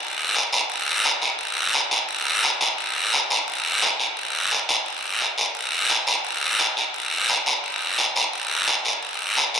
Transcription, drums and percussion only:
0, 0, Header, 1, 2, 480
1, 0, Start_track
1, 0, Tempo, 346821
1, 1, Time_signature, 4, 2, 24, 8
1, 13285, End_track
2, 0, Start_track
2, 0, Title_t, "Drums"
2, 5, Note_on_c, 9, 74, 61
2, 143, Note_off_c, 9, 74, 0
2, 486, Note_on_c, 9, 73, 70
2, 624, Note_off_c, 9, 73, 0
2, 727, Note_on_c, 9, 73, 70
2, 866, Note_off_c, 9, 73, 0
2, 965, Note_on_c, 9, 74, 71
2, 1104, Note_off_c, 9, 74, 0
2, 1446, Note_on_c, 9, 73, 70
2, 1584, Note_off_c, 9, 73, 0
2, 1684, Note_on_c, 9, 73, 63
2, 1822, Note_off_c, 9, 73, 0
2, 1921, Note_on_c, 9, 74, 69
2, 2059, Note_off_c, 9, 74, 0
2, 2404, Note_on_c, 9, 73, 67
2, 2543, Note_off_c, 9, 73, 0
2, 2647, Note_on_c, 9, 73, 64
2, 2785, Note_off_c, 9, 73, 0
2, 2888, Note_on_c, 9, 74, 70
2, 3027, Note_off_c, 9, 74, 0
2, 3368, Note_on_c, 9, 73, 66
2, 3506, Note_off_c, 9, 73, 0
2, 3610, Note_on_c, 9, 73, 69
2, 3749, Note_off_c, 9, 73, 0
2, 3852, Note_on_c, 9, 74, 59
2, 3990, Note_off_c, 9, 74, 0
2, 4332, Note_on_c, 9, 73, 70
2, 4470, Note_off_c, 9, 73, 0
2, 4572, Note_on_c, 9, 73, 65
2, 4711, Note_off_c, 9, 73, 0
2, 4815, Note_on_c, 9, 74, 68
2, 4953, Note_off_c, 9, 74, 0
2, 5290, Note_on_c, 9, 73, 63
2, 5428, Note_off_c, 9, 73, 0
2, 5531, Note_on_c, 9, 73, 63
2, 5669, Note_off_c, 9, 73, 0
2, 5770, Note_on_c, 9, 74, 65
2, 5908, Note_off_c, 9, 74, 0
2, 6245, Note_on_c, 9, 73, 65
2, 6384, Note_off_c, 9, 73, 0
2, 6491, Note_on_c, 9, 73, 69
2, 6629, Note_off_c, 9, 73, 0
2, 6727, Note_on_c, 9, 74, 67
2, 6865, Note_off_c, 9, 74, 0
2, 7205, Note_on_c, 9, 73, 58
2, 7343, Note_off_c, 9, 73, 0
2, 7442, Note_on_c, 9, 73, 69
2, 7580, Note_off_c, 9, 73, 0
2, 7681, Note_on_c, 9, 74, 67
2, 7819, Note_off_c, 9, 74, 0
2, 8162, Note_on_c, 9, 73, 67
2, 8300, Note_off_c, 9, 73, 0
2, 8400, Note_on_c, 9, 73, 68
2, 8539, Note_off_c, 9, 73, 0
2, 8645, Note_on_c, 9, 74, 65
2, 8784, Note_off_c, 9, 74, 0
2, 9127, Note_on_c, 9, 73, 67
2, 9265, Note_off_c, 9, 73, 0
2, 9370, Note_on_c, 9, 73, 63
2, 9508, Note_off_c, 9, 73, 0
2, 9609, Note_on_c, 9, 74, 65
2, 9747, Note_off_c, 9, 74, 0
2, 10090, Note_on_c, 9, 73, 66
2, 10228, Note_off_c, 9, 73, 0
2, 10328, Note_on_c, 9, 73, 68
2, 10466, Note_off_c, 9, 73, 0
2, 10572, Note_on_c, 9, 74, 61
2, 10710, Note_off_c, 9, 74, 0
2, 11050, Note_on_c, 9, 73, 68
2, 11189, Note_off_c, 9, 73, 0
2, 11291, Note_on_c, 9, 73, 66
2, 11430, Note_off_c, 9, 73, 0
2, 11533, Note_on_c, 9, 74, 70
2, 11672, Note_off_c, 9, 74, 0
2, 12009, Note_on_c, 9, 73, 68
2, 12147, Note_off_c, 9, 73, 0
2, 12248, Note_on_c, 9, 73, 65
2, 12386, Note_off_c, 9, 73, 0
2, 12490, Note_on_c, 9, 74, 74
2, 12629, Note_off_c, 9, 74, 0
2, 12966, Note_on_c, 9, 73, 71
2, 13105, Note_off_c, 9, 73, 0
2, 13208, Note_on_c, 9, 73, 73
2, 13285, Note_off_c, 9, 73, 0
2, 13285, End_track
0, 0, End_of_file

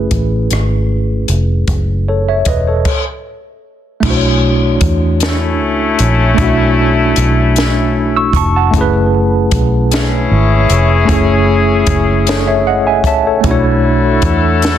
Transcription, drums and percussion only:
0, 0, Header, 1, 2, 480
1, 0, Start_track
1, 0, Key_signature, 2, "minor"
1, 0, Tempo, 784314
1, 1028, Time_signature, 6, 3, 24, 8
1, 9045, End_track
2, 0, Start_track
2, 0, Title_t, "Drums"
2, 67, Note_on_c, 9, 42, 66
2, 68, Note_on_c, 9, 36, 80
2, 128, Note_off_c, 9, 42, 0
2, 130, Note_off_c, 9, 36, 0
2, 309, Note_on_c, 9, 42, 62
2, 324, Note_on_c, 9, 37, 89
2, 370, Note_off_c, 9, 42, 0
2, 385, Note_off_c, 9, 37, 0
2, 784, Note_on_c, 9, 42, 69
2, 846, Note_off_c, 9, 42, 0
2, 1025, Note_on_c, 9, 42, 62
2, 1027, Note_on_c, 9, 36, 101
2, 1086, Note_off_c, 9, 42, 0
2, 1088, Note_off_c, 9, 36, 0
2, 1501, Note_on_c, 9, 42, 68
2, 1506, Note_on_c, 9, 36, 77
2, 1562, Note_off_c, 9, 42, 0
2, 1568, Note_off_c, 9, 36, 0
2, 1744, Note_on_c, 9, 49, 76
2, 1746, Note_on_c, 9, 36, 84
2, 1805, Note_off_c, 9, 49, 0
2, 1807, Note_off_c, 9, 36, 0
2, 2466, Note_on_c, 9, 36, 113
2, 2466, Note_on_c, 9, 49, 96
2, 2527, Note_off_c, 9, 36, 0
2, 2527, Note_off_c, 9, 49, 0
2, 2942, Note_on_c, 9, 42, 74
2, 2946, Note_on_c, 9, 36, 95
2, 3003, Note_off_c, 9, 42, 0
2, 3007, Note_off_c, 9, 36, 0
2, 3185, Note_on_c, 9, 42, 69
2, 3200, Note_on_c, 9, 38, 103
2, 3246, Note_off_c, 9, 42, 0
2, 3261, Note_off_c, 9, 38, 0
2, 3664, Note_on_c, 9, 42, 83
2, 3725, Note_off_c, 9, 42, 0
2, 3905, Note_on_c, 9, 42, 73
2, 3906, Note_on_c, 9, 36, 116
2, 3966, Note_off_c, 9, 42, 0
2, 3967, Note_off_c, 9, 36, 0
2, 4382, Note_on_c, 9, 42, 78
2, 4443, Note_off_c, 9, 42, 0
2, 4626, Note_on_c, 9, 42, 68
2, 4642, Note_on_c, 9, 38, 95
2, 4688, Note_off_c, 9, 42, 0
2, 4703, Note_off_c, 9, 38, 0
2, 5100, Note_on_c, 9, 36, 85
2, 5106, Note_on_c, 9, 42, 79
2, 5161, Note_off_c, 9, 36, 0
2, 5167, Note_off_c, 9, 42, 0
2, 5346, Note_on_c, 9, 36, 119
2, 5347, Note_on_c, 9, 42, 76
2, 5408, Note_off_c, 9, 36, 0
2, 5408, Note_off_c, 9, 42, 0
2, 5823, Note_on_c, 9, 42, 83
2, 5826, Note_on_c, 9, 36, 96
2, 5884, Note_off_c, 9, 42, 0
2, 5887, Note_off_c, 9, 36, 0
2, 6067, Note_on_c, 9, 42, 67
2, 6083, Note_on_c, 9, 38, 105
2, 6129, Note_off_c, 9, 42, 0
2, 6144, Note_off_c, 9, 38, 0
2, 6546, Note_on_c, 9, 42, 80
2, 6607, Note_off_c, 9, 42, 0
2, 6786, Note_on_c, 9, 36, 120
2, 6787, Note_on_c, 9, 42, 77
2, 6847, Note_off_c, 9, 36, 0
2, 6848, Note_off_c, 9, 42, 0
2, 7261, Note_on_c, 9, 42, 75
2, 7266, Note_on_c, 9, 36, 90
2, 7323, Note_off_c, 9, 42, 0
2, 7327, Note_off_c, 9, 36, 0
2, 7508, Note_on_c, 9, 42, 70
2, 7523, Note_on_c, 9, 38, 94
2, 7569, Note_off_c, 9, 42, 0
2, 7584, Note_off_c, 9, 38, 0
2, 7980, Note_on_c, 9, 36, 82
2, 7985, Note_on_c, 9, 42, 79
2, 8041, Note_off_c, 9, 36, 0
2, 8046, Note_off_c, 9, 42, 0
2, 8224, Note_on_c, 9, 42, 73
2, 8226, Note_on_c, 9, 36, 108
2, 8285, Note_off_c, 9, 42, 0
2, 8287, Note_off_c, 9, 36, 0
2, 8702, Note_on_c, 9, 42, 78
2, 8706, Note_on_c, 9, 36, 92
2, 8763, Note_off_c, 9, 42, 0
2, 8767, Note_off_c, 9, 36, 0
2, 8949, Note_on_c, 9, 42, 68
2, 8964, Note_on_c, 9, 38, 106
2, 9010, Note_off_c, 9, 42, 0
2, 9026, Note_off_c, 9, 38, 0
2, 9045, End_track
0, 0, End_of_file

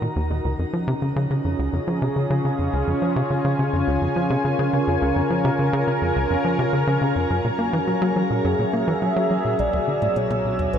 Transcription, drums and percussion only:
0, 0, Header, 1, 3, 480
1, 0, Start_track
1, 0, Tempo, 571429
1, 376, Time_signature, 4, 2, 24, 8
1, 9060, End_track
2, 0, Start_track
2, 0, Title_t, "Percussion blips"
2, 8176, Note_on_c, 9, 77, 76
2, 8260, Note_off_c, 9, 77, 0
2, 8417, Note_on_c, 9, 77, 43
2, 8501, Note_off_c, 9, 77, 0
2, 8657, Note_on_c, 9, 77, 79
2, 8741, Note_off_c, 9, 77, 0
2, 8897, Note_on_c, 9, 77, 73
2, 8981, Note_off_c, 9, 77, 0
2, 9060, End_track
3, 0, Start_track
3, 0, Title_t, "Drums"
3, 8056, Note_on_c, 9, 42, 59
3, 8140, Note_off_c, 9, 42, 0
3, 8417, Note_on_c, 9, 42, 48
3, 8501, Note_off_c, 9, 42, 0
3, 8537, Note_on_c, 9, 42, 63
3, 8621, Note_off_c, 9, 42, 0
3, 8657, Note_on_c, 9, 42, 35
3, 8741, Note_off_c, 9, 42, 0
3, 8897, Note_on_c, 9, 42, 46
3, 8981, Note_off_c, 9, 42, 0
3, 9017, Note_on_c, 9, 42, 62
3, 9060, Note_off_c, 9, 42, 0
3, 9060, End_track
0, 0, End_of_file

